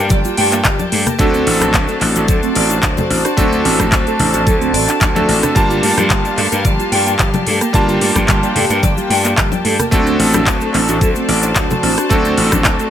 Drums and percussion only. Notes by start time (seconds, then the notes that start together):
0.10 kick, closed hi-hat, high conga, shaker
0.25 closed hi-hat, shaker
0.37 open hi-hat
0.52 clap, closed hi-hat, shaker
0.64 kick, clap, closed hi-hat, shaker
0.79 closed hi-hat, high conga, shaker
0.92 open hi-hat
1.06 cross-stick, closed hi-hat, low conga, shaker
1.19 kick, closed hi-hat, shaker
1.34 closed hi-hat, shaker
1.47 open hi-hat
1.60 cross-stick, closed hi-hat, high conga, shaker
1.74 kick, clap, closed hi-hat, shaker
1.88 closed hi-hat, shaker
2.01 clap, open hi-hat
2.16 closed hi-hat, shaker
2.28 kick, closed hi-hat, high conga, shaker
2.43 closed hi-hat, shaker
2.55 open hi-hat
2.70 closed hi-hat, shaker
2.83 kick, clap, closed hi-hat, shaker
2.97 closed hi-hat, high conga, low conga, shaker
3.10 open hi-hat
3.25 cross-stick, closed hi-hat, shaker
3.38 kick, closed hi-hat, shaker
3.52 closed hi-hat, shaker
3.65 open hi-hat
3.79 kick, cross-stick, closed hi-hat, high conga, shaker
3.92 kick, clap, closed hi-hat, shaker
4.07 closed hi-hat, shaker
4.19 open hi-hat, low conga
4.33 closed hi-hat, shaker
4.47 kick, closed hi-hat, high conga, shaker
4.61 closed hi-hat, shaker
4.74 open hi-hat
4.88 clap, closed hi-hat, shaker
5.01 kick, clap, closed hi-hat, shaker
5.16 closed hi-hat, high conga, shaker
5.29 open hi-hat
5.43 cross-stick, closed hi-hat, low conga, shaker
5.56 kick, closed hi-hat, shaker
5.70 closed hi-hat, shaker
5.83 open hi-hat
5.98 cross-stick, closed hi-hat, high conga, shaker
6.10 kick, clap, closed hi-hat, shaker
6.25 closed hi-hat, shaker
6.38 clap, open hi-hat
6.52 closed hi-hat, shaker
6.65 kick, closed hi-hat, high conga, shaker
6.80 closed hi-hat, shaker
6.92 open hi-hat
7.07 closed hi-hat, shaker
7.19 kick, clap, closed hi-hat, shaker
7.34 closed hi-hat, high conga, low conga, shaker
7.46 open hi-hat
7.61 cross-stick, closed hi-hat, shaker
7.74 kick, closed hi-hat, shaker
7.89 closed hi-hat, shaker
8.01 open hi-hat
8.15 kick, cross-stick, closed hi-hat, high conga, shaker
8.28 kick, clap, closed hi-hat, shaker
8.43 closed hi-hat, shaker
8.56 open hi-hat, low conga
8.70 closed hi-hat, shaker
8.83 kick, closed hi-hat, high conga, shaker
8.97 closed hi-hat, shaker
9.10 open hi-hat
9.24 clap, closed hi-hat, shaker
9.38 kick, clap, closed hi-hat, shaker
9.52 closed hi-hat, high conga, shaker
9.65 open hi-hat
9.79 cross-stick, closed hi-hat, low conga, shaker
9.92 kick, closed hi-hat, shaker
10.06 closed hi-hat, shaker
10.20 open hi-hat
10.33 cross-stick, closed hi-hat, high conga, shaker
10.47 kick, clap, closed hi-hat, shaker
10.61 closed hi-hat, shaker
10.74 clap, open hi-hat
10.89 closed hi-hat, shaker
11.01 kick, closed hi-hat, high conga, shaker
11.15 closed hi-hat, shaker
11.29 open hi-hat
11.43 closed hi-hat, shaker
11.56 kick, clap, closed hi-hat, shaker
11.70 closed hi-hat, high conga, low conga, shaker
11.83 open hi-hat
11.98 cross-stick, closed hi-hat, shaker
12.10 kick, closed hi-hat, shaker
12.25 closed hi-hat, shaker
12.38 open hi-hat
12.52 kick, cross-stick, closed hi-hat, high conga, shaker
12.65 kick, clap, closed hi-hat, shaker
12.79 closed hi-hat, shaker